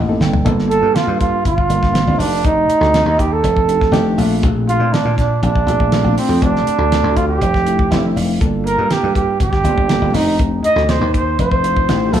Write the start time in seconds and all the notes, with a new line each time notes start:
Already playing: A1 D#5
0.08 A#3 C4 D#4 A4
0.20 G1 G5, snare
0.33 floor tom
0.45 G1 A#3 D4 F4 A4, kick, closed hi-hat
0.59 snare
0.69 A4, closed hi-hat
0.82 G2
0.95 F4, muted slap bass stroke, snare, closed hi-hat
1.07 G2
1.20 F4, kick, closed hi-hat
1.45 G1 F4, kick, closed hi-hat
1.58 kick
1.68 G1 A#3 D4 F4 A#4, closed hi-hat
1.83 kick, snare
1.93 A#3 D4 F4 C5, snare, closed hi-hat
2.07 G1
2.18 F1 A3 D4 D#4 G4 D5, open hi-hat
2.45 D#4, kick, closed hi-hat
2.69 muted slap bass stroke, closed hi-hat
2.81 D2, snare
2.94 snare, closed hi-hat
3.06 D#2
3.19 G4, kick, closed hi-hat
3.32 A4
3.44 F1, kick, closed hi-hat
3.57 kick
3.67 A3 D4 D#4 G4, closed hi-hat
3.81 kick, snare
3.91 F1 A3 D4 D#4 G4, snare, closed hi-hat
4.18 A#1 A3 C4 D4 F4, open hi-hat
4.43 A#1, kick, closed hi-hat
4.68 F4, closed hi-hat
4.80 A#2
4.92 D4, muted slap bass stroke, snare, closed hi-hat
5.05 A#2
5.18 D4, kick, snare, closed hi-hat
5.43 A#1 D4, kick, closed hi-hat
5.56 kick
5.66 A#1 A3 C4 D4 F4, closed hi-hat
5.80 kick
5.91 A3 C4 D4 F4, snare, closed hi-hat
6.04 A#1
6.17 C4, open hi-hat
6.29 F2
6.41 F1 A3 C4 D4 G4, kick, closed hi-hat
6.56 snare
6.66 muted slap bass stroke, closed hi-hat
6.78 D2
6.92 snare, closed hi-hat
7.04 D2
7.17 F4, kick, closed hi-hat
7.29 G4
7.41 F1, kick, closed hi-hat
7.54 kick, snare
7.65 A3 C4 D4 E4, closed hi-hat
7.79 kick
7.91 F1 A3 C4 D4 E4 D5, snare, closed hi-hat
8.16 F1 F5, open hi-hat
8.40 G1 A#3 D4 F4 A4, kick, closed hi-hat
8.66 A#4, closed hi-hat
8.78 G2
8.91 G4, muted slap bass stroke, snare, closed hi-hat
9.03 G2
9.15 G4, kick, closed hi-hat
9.40 G1 G4, kick, closed hi-hat
9.53 kick, snare
9.64 G1 A#3 D4 F4 G4, closed hi-hat
9.78 kick
9.88 A#3 D4 F4 A4, snare, closed hi-hat
10.01 G1
10.14 F1 A3 D4 D#4 G4, open hi-hat
10.39 kick, closed hi-hat
10.64 D#5, muted slap bass stroke, closed hi-hat
10.76 D2, snare
10.89 C5, snare, closed hi-hat
11.01 D#2
11.14 C5, kick, closed hi-hat
11.39 F1 C5, kick, closed hi-hat
11.51 kick
11.63 A3 D4 D#4 F4, closed hi-hat
11.77 kick
11.89 A1 A3 D4 D#4 G4, snare, closed hi-hat
12.13 A#1 A3 C4 D4 F4 A4, open hi-hat